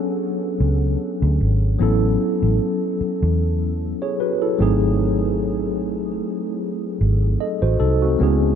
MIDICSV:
0, 0, Header, 1, 4, 480
1, 0, Start_track
1, 0, Tempo, 800000
1, 1082, Time_signature, 4, 2, 24, 8
1, 5131, End_track
2, 0, Start_track
2, 0, Title_t, "Tine electric piano"
2, 0, Program_c, 0, 4
2, 0, Control_c, 0, 64, 127
2, 0, Note_on_c, 0, 54, 70
2, 0, Note_on_c, 0, 59, 67
2, 0, Note_on_c, 0, 61, 68
2, 0, Note_on_c, 0, 62, 65
2, 0, Note_on_c, 0, 69, 83
2, 1050, Note_off_c, 0, 54, 0
2, 1053, Note_off_c, 0, 59, 0
2, 1057, Note_off_c, 0, 61, 0
2, 1059, Note_off_c, 0, 62, 0
2, 1062, Note_off_c, 0, 69, 0
2, 1072, Note_on_c, 0, 54, 79
2, 1077, Note_on_c, 0, 59, 67
2, 1083, Note_on_c, 0, 61, 69
2, 1089, Control_c, 0, 64, 0
2, 1090, Note_on_c, 0, 64, 70
2, 1096, Note_on_c, 0, 69, 81
2, 1198, Control_c, 0, 64, 127
2, 2262, Note_off_c, 0, 64, 0
2, 2265, Note_off_c, 0, 69, 0
2, 2412, Note_on_c, 0, 73, 67
2, 2416, Note_on_c, 0, 68, 56
2, 2516, Note_off_c, 0, 73, 0
2, 2519, Note_off_c, 0, 68, 0
2, 2522, Note_on_c, 0, 71, 70
2, 2526, Note_on_c, 0, 66, 59
2, 2645, Note_off_c, 0, 71, 0
2, 2647, Note_off_c, 0, 66, 0
2, 2651, Note_on_c, 0, 69, 66
2, 2654, Note_on_c, 0, 64, 61
2, 2733, Note_off_c, 0, 54, 0
2, 2735, Note_off_c, 0, 59, 0
2, 2739, Note_off_c, 0, 61, 0
2, 2750, Note_on_c, 0, 54, 72
2, 2756, Note_on_c, 0, 57, 68
2, 2762, Note_on_c, 0, 60, 70
2, 2768, Note_on_c, 0, 63, 71
2, 2770, Control_c, 0, 64, 0
2, 2773, Note_on_c, 0, 68, 83
2, 2879, Note_off_c, 0, 69, 0
2, 2881, Note_off_c, 0, 64, 0
2, 2884, Control_c, 0, 64, 127
2, 4418, Note_off_c, 0, 60, 0
2, 4421, Note_off_c, 0, 63, 0
2, 4424, Note_off_c, 0, 68, 0
2, 4443, Note_on_c, 0, 75, 65
2, 4446, Note_on_c, 0, 69, 54
2, 4566, Note_off_c, 0, 75, 0
2, 4567, Note_off_c, 0, 69, 0
2, 4573, Note_on_c, 0, 72, 71
2, 4576, Note_on_c, 0, 66, 62
2, 4652, Note_off_c, 0, 54, 0
2, 4655, Note_off_c, 0, 57, 0
2, 4677, Note_off_c, 0, 72, 0
2, 4678, Note_on_c, 0, 69, 75
2, 4679, Note_off_c, 0, 66, 0
2, 4684, Note_on_c, 0, 63, 60
2, 4803, Note_off_c, 0, 69, 0
2, 4806, Note_off_c, 0, 63, 0
2, 4813, Note_on_c, 0, 66, 68
2, 4816, Note_on_c, 0, 60, 58
2, 4913, Note_on_c, 0, 56, 73
2, 4919, Note_on_c, 0, 59, 72
2, 4926, Note_on_c, 0, 61, 71
2, 4929, Control_c, 0, 64, 0
2, 4931, Note_on_c, 0, 64, 67
2, 4938, Note_on_c, 0, 68, 82
2, 5035, Control_c, 0, 64, 127
2, 5040, Note_off_c, 0, 66, 0
2, 5042, Note_off_c, 0, 60, 0
2, 5131, Note_off_c, 0, 56, 0
2, 5131, Note_off_c, 0, 59, 0
2, 5131, Note_off_c, 0, 61, 0
2, 5131, Note_off_c, 0, 64, 0
2, 5131, Note_off_c, 0, 68, 0
2, 5131, End_track
3, 0, Start_track
3, 0, Title_t, "Fingered electric bass"
3, 0, Program_c, 1, 33
3, 362, Note_on_c, 1, 37, 83
3, 573, Note_off_c, 1, 37, 0
3, 733, Note_on_c, 1, 38, 94
3, 829, Note_off_c, 1, 38, 0
3, 844, Note_on_c, 1, 32, 96
3, 1054, Note_off_c, 1, 32, 0
3, 1084, Note_on_c, 1, 33, 100
3, 1294, Note_off_c, 1, 33, 0
3, 1455, Note_on_c, 1, 33, 86
3, 1550, Note_off_c, 1, 33, 0
3, 1935, Note_on_c, 1, 40, 89
3, 2355, Note_off_c, 1, 40, 0
3, 2762, Note_on_c, 1, 32, 101
3, 3718, Note_off_c, 1, 32, 0
3, 4205, Note_on_c, 1, 32, 96
3, 4414, Note_off_c, 1, 32, 0
3, 4575, Note_on_c, 1, 33, 88
3, 4670, Note_off_c, 1, 33, 0
3, 4683, Note_on_c, 1, 36, 85
3, 4893, Note_off_c, 1, 36, 0
3, 4925, Note_on_c, 1, 37, 102
3, 5131, Note_off_c, 1, 37, 0
3, 5131, End_track
4, 0, Start_track
4, 0, Title_t, "Muted fingered electric bass strokes"
4, 1805, Note_on_c, 9, 29, 46
4, 1865, Note_off_c, 9, 29, 0
4, 5131, End_track
0, 0, End_of_file